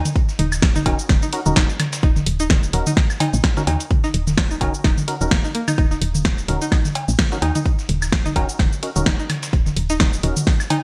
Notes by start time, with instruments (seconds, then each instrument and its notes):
0.05 closed hi-hat, open hi-hat, high tom, shaker
0.16 kick, closed hi-hat
0.29 snare, shaker
0.39 fm bass D#1, synth pluck D#4, closed hi-hat, open hi-hat, high tom
0.52 snare, claves, shaker
0.62 kick, snare, closed hi-hat
0.76 synth pluck D#4, high tom, shaker
0.86 fm bass D#1, synth stab C#4 D#4 F#4 A#4, kick, closed hi-hat, open hi-hat, cowbell
0.99 shaker
1.09 fm bass D#1, kick, snare, closed hi-hat, high tom
1.22 synth pluck D#4, shaker
1.33 synth stab C#4 D#4 F#4 A#4, open hi-hat
1.46 fm bass D#1, synth stab C#4 D#4 F#4 A#4, high tom, shaker
1.56 fm bass D#1, synth pluck D#4, kick, snare
1.69 shaker
1.80 snare, closed hi-hat, open hi-hat, high tom, claves
1.93 snare, closed hi-hat, open hi-hat, shaker
2.03 fm bass D#1, synth pluck D#4, kick, closed hi-hat
2.16 snare, high tom, shaker
2.26 fm bass D#1, closed hi-hat, open hi-hat
2.40 synth pluck D#4, shaker
2.50 kick, snare, closed hi-hat, high tom
2.63 shaker
2.73 fm bass D#1, synth stab C#4 D#4 F#4 A#4, closed hi-hat, open hi-hat
2.87 synth pluck D#4, high tom, shaker
2.97 kick, snare, closed hi-hat
3.10 snare, claves, shaker
3.20 synth pluck D#4, closed hi-hat, open hi-hat, high tom, cowbell
3.34 fm bass A#1, shaker
3.44 kick, snare, closed hi-hat
3.57 synth stab C#4 D#4 F#4 A#4, snare, high tom, shaker
3.67 fm bass D#2, synth pluck D#4, closed hi-hat, open hi-hat, cowbell
3.80 closed hi-hat, open hi-hat, shaker
3.91 kick, closed hi-hat, high tom
4.04 synth pluck D#4, snare, shaker
4.14 fm bass D#1, closed hi-hat, open hi-hat
4.27 snare, high tom, shaker
4.37 kick, snare, closed hi-hat, claves
4.51 synth pluck D#4, shaker
4.61 fm bass D#1, synth stab C#4 D#4 F#4 A#4, kick, closed hi-hat, open hi-hat, high tom, cowbell
4.74 shaker
4.84 fm bass D#1, synth pluck D#4, kick, snare, closed hi-hat
4.98 high tom, shaker
5.08 synth stab C#4 D#4 F#4 A#4, open hi-hat
5.21 fm bass D#1, synth stab C#4 D#4 F#4 A#4, shaker
5.31 fm bass D#1, synth pluck A#3, kick, snare, closed hi-hat, high tom
5.45 synth pluck D#4, shaker
5.55 synth pluck A#3, closed hi-hat, open hi-hat
5.68 synth pluck D#4, closed hi-hat, open hi-hat, high tom, claves, shaker
5.78 fm bass D#1, synth pluck D#4, kick, closed hi-hat, high tom
5.91 synth pluck D#4, snare, shaker
6.01 fm bass D#1, closed hi-hat, open hi-hat
6.15 high tom, shaker
6.25 kick, snare, closed hi-hat
6.38 shaker
6.48 fm bass D#1, synth stab C#4 D#4 F#4 A#4, closed hi-hat, open hi-hat, high tom
6.61 synth pluck D#4, shaker
6.72 synth pluck D#4, kick, snare, closed hi-hat, claves
6.85 snare, high tom, shaker
6.95 closed hi-hat, open hi-hat, cowbell
7.08 fm bass A#1, shaker
7.19 kick, snare, closed hi-hat, high tom
7.32 synth stab C#4 D#4 F#4 A#4, snare, shaker
7.42 fm bass D#2, synth pluck D#4, closed hi-hat, open hi-hat, cowbell
7.55 synth pluck D#4, closed hi-hat, open hi-hat, high tom, shaker
7.66 kick, closed hi-hat
7.79 snare, shaker
7.89 fm bass D#1, closed hi-hat, open hi-hat, high tom
8.02 snare, claves, shaker
8.12 kick, snare, closed hi-hat
8.26 synth pluck D#4, high tom, shaker
8.36 fm bass D#1, synth stab C#4 D#4 F#4 A#4, synth pluck D#4, kick, closed hi-hat, open hi-hat, cowbell
8.49 shaker
8.59 fm bass D#1, kick, snare, closed hi-hat, high tom
8.73 shaker
8.83 synth stab C#4 D#4 F#4 A#4, open hi-hat
8.96 fm bass D#1, synth stab C#4 D#4 F#4 A#4, high tom, shaker
9.06 fm bass D#1, synth pluck D#4, kick, snare, closed hi-hat
9.19 synth pluck D#4, shaker
9.30 snare, closed hi-hat, open hi-hat, high tom, claves
9.43 snare, closed hi-hat, open hi-hat, shaker
9.53 fm bass D#1, kick, closed hi-hat
9.66 snare, high tom, shaker
9.77 fm bass D#1, closed hi-hat, open hi-hat
9.90 synth pluck D#4, shaker
10.00 synth pluck D#4, kick, snare, closed hi-hat, high tom
10.13 shaker
10.23 fm bass D#1, synth stab C#4 D#4 F#4 A#4, closed hi-hat, open hi-hat
10.37 high tom, shaker
10.47 kick, snare, closed hi-hat
10.60 snare, claves, shaker
10.70 synth pluck D#4, closed hi-hat, open hi-hat, high tom, cowbell